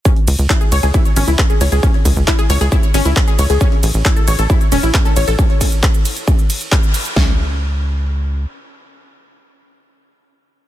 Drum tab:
RD |--x---x---x---x-|--x---x---x---x-|--x---x---x---x-|--x---x---x---x-|
HH |xxoxxxoxxxoxxxox|xxoxxxoxxxoxxxox|xxoxxxoxxxoxxxox|xxoxxxoxxxoxxxox|
SH |x-xxxxxxxxxxxxxx|x-xxxxxxxxxxxxxx|x-xxxxxxxxxxxxxx|x-xxxxxxxxxxxxxx|
CP |----x-------x---|----x-------x---|----x-------x---|----x-------x---|
SD |----------------|----------------|----------------|----------------|
BD |o---o---o---o---|o-o-o---o---o---|o---o---o---o---|o-o-o---o---o---|

RD |----------------|----------------|
HH |----------------|----------------|
SH |----------------|----------------|
CP |----------------|----------------|
SD |o---------------|----------------|
BD |o---------------|----------------|